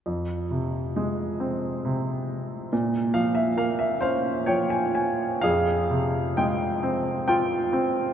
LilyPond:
<<
  \new Staff \with { instrumentName = "Grand piano" } { \time 3/4 \key f \minor \tempo 4 = 67 << { r2. | r8 f''16 e''16 f''16 e''16 f''8 g''16 aes''16 aes''8 | aes'4. r4. | } \\ { r2. | r4. c''8 des''4 | f''4 g''4 g''4 | } >> }
  \new Staff \with { instrumentName = "Grand piano" } { \clef bass \time 3/4 \key f \minor f,8 c8 aes8 c'8 c4 | bes,8 f8 bes8 des'8 f4 | f,8 c8 aes8 c'8 f'8 c'8 | }
>>